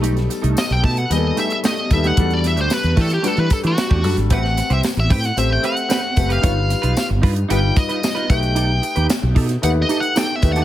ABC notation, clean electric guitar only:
X:1
M:4/4
L:1/16
Q:1/4=113
K:Bphr
V:1 name="Clean electric guitar"
[A,^DG] z2 [A,DA] z2 [A,DG] z3 [A,DG] z [A,DG] z2 [A,DG] | [A,DA] z2 [A,DG] z2 [A,DG] z [A,DG] z2 [A,DG] z [A,DG] z2 | [CGB] z2 [CGc] z2 [CGB] z3 [CGB] z [CGB] z2 [CGB] | [^D=F^c] z2 [DFB] z2 [DFB] z [DFB] z2 [DFB] z [DFB] z2 |
[^DGA] z2 [DGB] z2 [DGA] z3 [DGA] z [DGA] z2 [DGA] |]